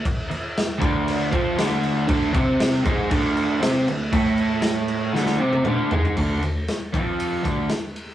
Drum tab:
CC |x-x-x-x-x-x-x-x-|x-x-x-x-x-x-x-x-|x-x-x-x---------|x---------------|
RD |----------------|----------------|----------------|--x-x-x-x-x-x-x-|
SD |----o-------o---|----o-------o---|----o---oo------|----o-----o-o---|
T1 |----------------|----------------|-----------o----|----------------|
T2 |----------------|----------------|------------o---|----------------|
FT |----------------|----------------|--------------oo|----------------|
BD |o-----o---o-----|o-o---o-o-------|o---------------|o-----o---o-----|